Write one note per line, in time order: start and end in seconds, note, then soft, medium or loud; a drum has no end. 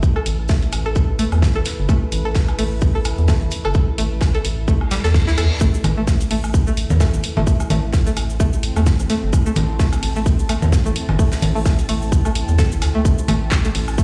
0.00 0.13 A1 medium
0.00 14.04 E4 medium
0.00 14.04 A4 medium
0.00 6.44 B4 medium
0.00 kick loud
0.00 shaker medium
0.16 0.19 A4 medium
0.16 low woodblock soft
0.26 0.69 A1 medium
0.26 open hi-hat medium
0.26 shaker medium
0.48 0.54 A3 medium
0.48 kick loud
0.48 snare loud
0.48 shaker medium
0.62 open hi-hat soft
0.72 1.27 A1 medium
0.72 open hi-hat medium
0.72 low woodblock soft
0.72 shaker medium
0.86 0.89 A4 medium
0.96 kick loud
0.96 shaker medium
1.19 1.24 A3 medium
1.19 open hi-hat medium
1.19 shaker medium
1.32 1.49 E2 medium
1.32 closed hi-hat soft
1.32 low woodblock soft
1.42 kick medium
1.42 snare loud
1.42 shaker medium
1.55 1.63 A1 medium
1.55 1.59 A4 medium
1.65 snare soft
1.65 open hi-hat medium
1.65 shaker medium
1.79 1.86 G1 medium
1.89 1.99 A1 medium
1.89 1.93 A3 medium
1.89 kick loud
1.89 low woodblock soft
1.89 shaker medium
2.12 2.55 A1 medium
2.12 open hi-hat medium
2.12 shaker medium
2.25 2.29 A4 medium
2.35 kick medium
2.35 snare medium
2.35 shaker medium
2.48 open hi-hat soft
2.48 low woodblock soft
2.59 3.13 A1 medium
2.59 2.63 A3 medium
2.59 open hi-hat medium
2.81 kick loud
2.81 shaker medium
2.95 2.99 A4 medium
3.05 open hi-hat medium
3.05 low woodblock soft
3.05 shaker medium
3.18 3.35 E2 medium
3.18 closed hi-hat soft
3.28 3.33 A3 medium
3.28 kick medium
3.28 snare loud
3.28 shaker medium
3.41 3.49 A1 medium
3.41 closed hi-hat soft
3.51 open hi-hat medium
3.51 shaker medium
3.65 3.72 G1 medium
3.65 3.68 A4 medium
3.65 low woodblock soft
3.74 3.85 A1 medium
3.74 kick loud
3.74 shaker medium
3.98 4.41 A1 medium
3.98 4.03 A3 medium
3.98 open hi-hat medium
3.98 shaker medium
4.21 kick loud
4.21 snare loud
4.21 low woodblock soft
4.21 shaker medium
4.35 4.38 A4 medium
4.35 open hi-hat soft
4.45 4.99 A1 medium
4.45 open hi-hat medium
4.45 shaker medium
4.68 4.73 A3 medium
4.68 kick loud
4.68 reverse cymbal medium
4.68 shaker medium
4.81 low woodblock soft
4.91 4.94 G3 loud
4.91 snare medium
4.91 open hi-hat medium
4.91 shaker medium
5.04 5.29 E2 loud
5.04 5.06 A4 loud
5.04 snare medium
5.04 open hi-hat soft
5.04 shaker medium
5.14 kick medium
5.14 snare loud
5.14 shaker medium
5.28 5.35 D2 medium
5.28 5.31 E4 loud
5.28 snare medium
5.28 shaker medium
5.38 5.48 E2 medium
5.38 5.40 A4 medium
5.38 snare soft
5.38 open hi-hat medium
5.38 low woodblock soft
5.38 shaker medium
5.61 5.71 A1 medium
5.61 5.66 A3 medium
5.61 14.04 C4 medium
5.61 kick loud
5.61 shaker medium
5.74 shaker soft
5.84 6.27 A1 medium
5.84 open hi-hat medium
5.84 low conga medium
5.84 low woodblock soft
5.84 shaker medium
5.97 6.01 A3 medium
6.07 kick loud
6.07 snare loud
6.07 shaker medium
6.21 open hi-hat soft
6.21 shaker soft
6.31 6.85 A1 medium
6.31 6.35 A3 medium
6.31 open hi-hat medium
6.41 13.88 A5 medium
6.41 low woodblock soft
6.41 shaker soft
6.54 kick loud
6.54 shaker medium
6.67 6.71 A3 medium
6.67 shaker soft
6.77 open hi-hat medium
6.77 shaker medium
6.90 7.07 E2 loud
6.90 closed hi-hat soft
6.90 low conga medium
6.90 shaker soft
7.00 7.05 A3 medium
7.00 kick loud
7.00 snare loud
7.00 low woodblock soft
7.00 shaker medium
7.14 7.21 A1 loud
7.14 closed hi-hat soft
7.14 shaker soft
7.23 open hi-hat medium
7.23 shaker medium
7.37 7.44 G1 medium
7.37 7.40 A3 medium
7.37 low conga medium
7.47 7.57 A1 medium
7.47 kick loud
7.47 shaker medium
7.60 low woodblock soft
7.60 shaker soft
7.70 8.13 A1 medium
7.70 7.75 A3 medium
7.70 open hi-hat medium
7.70 low conga medium
7.70 shaker medium
7.93 kick loud
7.93 snare loud
7.93 shaker medium
8.07 8.10 A3 medium
8.07 open hi-hat soft
8.07 shaker soft
8.17 8.71 A1 medium
8.17 open hi-hat medium
8.17 low woodblock soft
8.17 shaker medium
8.30 shaker soft
8.40 8.45 A3 medium
8.40 kick loud
8.40 shaker medium
8.53 shaker soft
8.63 open hi-hat medium
8.63 shaker medium
8.76 8.93 E2 loud
8.76 8.80 A3 medium
8.76 closed hi-hat soft
8.76 low woodblock soft
8.76 shaker soft
8.86 kick loud
8.86 snare loud
8.86 shaker medium
9.00 9.07 A1 loud
9.00 shaker soft
9.10 9.14 A3 medium
9.10 snare soft
9.10 open hi-hat medium
9.10 shaker medium
9.23 9.31 G1 medium
9.33 9.43 A1 loud
9.33 kick loud
9.33 low woodblock soft
9.33 shaker medium
9.46 9.50 A3 medium
9.46 shaker soft
9.56 9.99 A1 medium
9.56 open hi-hat medium
9.56 low conga medium
9.56 shaker medium
9.79 9.84 A3 medium
9.79 kick loud
9.79 snare loud
9.79 shaker medium
9.93 open hi-hat soft
9.93 low woodblock soft
9.93 shaker soft
10.03 10.57 A1 medium
10.03 open hi-hat medium
10.16 10.20 A3 medium
10.16 shaker soft
10.26 kick loud
10.26 shaker medium
10.39 shaker soft
10.49 10.54 A3 medium
10.49 open hi-hat loud
10.49 low woodblock soft
10.49 shaker medium
10.62 10.79 E2 loud
10.62 closed hi-hat soft
10.62 low conga medium
10.62 shaker soft
10.72 kick loud
10.72 snare loud
10.72 shaker medium
10.86 10.93 A1 loud
10.86 10.89 A3 medium
10.86 closed hi-hat soft
10.86 shaker soft
10.96 open hi-hat medium
11.09 11.17 G1 medium
11.09 low conga medium
11.09 low woodblock soft
11.19 11.29 A1 loud
11.19 11.24 A3 medium
11.19 kick loud
11.19 open hi-hat medium
11.19 shaker medium
11.32 snare loud
11.32 shaker medium
11.32 shaker soft
11.42 11.85 A1 medium
11.42 open hi-hat medium
11.42 low conga medium
11.55 11.59 A3 medium
11.55 open hi-hat medium
11.65 kick loud
11.65 snare medium
11.65 low woodblock soft
11.65 shaker medium
11.79 open hi-hat soft
11.79 shaker soft
11.89 12.43 A1 medium
11.89 11.94 A3 medium
11.89 open hi-hat medium
12.02 shaker soft
12.12 kick loud
12.12 shaker medium
12.25 12.29 A3 medium
12.25 low woodblock soft
12.25 shaker soft
12.35 open hi-hat medium
12.35 shaker medium
12.48 12.73 E2 medium
12.48 closed hi-hat soft
12.48 shaker soft
12.58 12.66 A4 medium
12.58 kick loud
12.58 snare loud
12.58 shaker medium
12.72 12.83 G1 medium
12.72 shaker soft
12.82 12.92 D2 medium
12.82 snare soft
12.82 open hi-hat medium
12.82 low woodblock soft
12.82 shaker medium
12.95 13.00 A3 medium
13.05 13.15 A1 medium
13.05 kick loud
13.05 shaker medium
13.18 shaker soft
13.28 13.71 A1 medium
13.28 13.33 A3 medium
13.28 open hi-hat medium
13.28 low conga medium
13.28 low woodblock soft
13.28 shaker medium
13.51 kick loud
13.51 snare loud
13.51 clap medium
13.51 shaker medium
13.65 13.67 A3 medium
13.65 open hi-hat soft
13.65 shaker soft
13.75 14.04 A1 medium
13.75 open hi-hat medium
13.88 low woodblock soft
13.88 shaker soft
13.98 14.03 A3 medium
13.98 kick loud
13.98 shaker medium